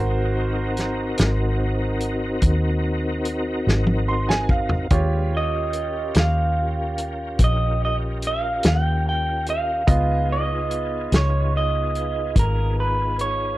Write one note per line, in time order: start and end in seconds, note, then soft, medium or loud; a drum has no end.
0.00 1.14 G#1 medium
0.00 4.87 C4 medium
0.00 4.87 D#4 medium
0.00 4.87 F#4 medium
0.00 4.88 F#4 medium
0.00 4.87 A#4 soft
0.00 4.87 A#4 medium
0.00 4.87 C5 medium
0.77 snare soft
0.77 closed hi-hat medium
1.17 2.39 G#1 medium
1.17 snare medium
1.17 closed hi-hat medium
2.00 closed hi-hat medium
2.42 3.63 D#2 medium
2.42 kick medium
2.42 closed hi-hat medium
3.25 closed hi-hat medium
3.67 4.87 G#1 medium
3.67 snare soft
3.87 high tom medium
4.08 4.28 C6 soft
4.29 4.48 G#5 soft
4.29 snare medium
4.49 4.88 F5 soft
4.49 kick medium
4.69 floor tom medium
4.90 6.11 D#2 medium
4.90 5.33 G#3 medium
4.90 5.33 D4 medium
4.90 5.31 F4 medium
4.90 9.84 F4 soft
4.90 9.83 G4 soft
4.90 5.33 B4 medium
4.90 9.84 C#5 medium
4.90 kick loud
4.90 closed hi-hat medium
5.32 9.83 C#4 medium
5.32 9.84 F4 soft
5.32 9.84 G4 soft
5.32 9.84 A#4 medium
5.37 6.19 D#5 medium
5.73 closed hi-hat medium
6.14 7.36 D#2 medium
6.14 snare medium
6.14 closed hi-hat medium
6.20 7.38 F5 medium
6.98 closed hi-hat medium
7.39 8.59 A#1 medium
7.39 kick medium
7.39 closed hi-hat medium
7.44 7.84 D#5 medium
7.85 7.95 D#5 medium
8.22 closed hi-hat medium
8.27 8.67 F5 medium
8.63 9.84 D#2 medium
8.63 snare medium
8.63 closed hi-hat medium
8.68 9.08 G5 medium
9.09 9.49 G5 medium
9.46 10.32 F5 medium
9.46 closed hi-hat medium
9.87 11.08 C#2 medium
9.87 13.58 B3 soft
9.87 13.58 B3 medium
9.87 13.58 D#4 medium
9.87 13.58 F4 soft
9.87 13.58 F4 medium
9.87 13.58 G#4 medium
9.87 13.58 D#5 soft
9.87 kick loud
9.87 closed hi-hat medium
10.32 11.15 D#5 medium
10.71 closed hi-hat medium
11.12 12.32 C#2 medium
11.12 11.56 C#5 medium
11.12 snare medium
11.12 closed hi-hat medium
11.57 12.39 D#5 medium
11.95 closed hi-hat medium
12.36 13.55 G#1 medium
12.36 12.76 A#4 medium
12.36 kick medium
12.36 closed hi-hat medium
12.80 13.17 B4 medium
13.19 13.58 C#5 medium
13.19 closed hi-hat medium